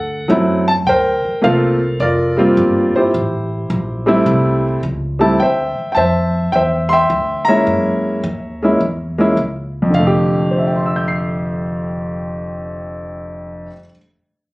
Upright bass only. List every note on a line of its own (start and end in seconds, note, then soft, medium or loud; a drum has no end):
0.00 0.29 D2 medium
0.30 0.85 F#2 medium
0.86 1.22 D2 medium
1.25 muted upright bass stroke soft
1.44 1.99 C2 medium
2.00 2.55 F1 medium
2.57 2.92 G1 medium
2.95 muted upright bass stroke soft
3.14 3.69 A1 medium
3.70 4.25 A#1 medium
4.26 4.82 C2 medium
4.83 5.38 C#2 medium
5.40 5.75 D2 medium
5.78 muted upright bass stroke soft
5.96 6.52 F2 medium
6.53 7.09 E2 medium
7.10 7.65 D2 medium
7.67 8.22 F#2 medium
8.23 8.79 D#2 medium
8.81 9.36 E2 medium
9.37 9.92 C#2 medium
9.94 13.67 F1 medium